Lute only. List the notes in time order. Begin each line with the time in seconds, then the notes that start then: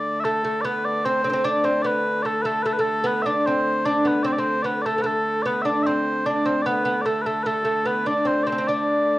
0.25 A3
0.44 A3
0.65 B3
1.05 C4
1.24 C4
1.30 C4
1.44 D4
1.64 C4
1.84 B3
2.25 A3
2.45 A3
2.65 A3
2.79 A3
3.04 B3
3.26 D4
3.47 C4
3.85 D4
4.05 B3
4.24 C4
4.38 C4
4.64 B3
4.86 A3
4.98 B3
5.04 A3
5.46 B3
5.65 D4
5.87 C4
6.26 D4
6.46 C4
6.66 B3
6.85 B3
7.06 A3
7.26 A3
7.46 A3
7.65 A3
7.85 B3
8.06 D4
8.25 C4
8.47 C4
8.52 C4
8.58 C4
8.69 D4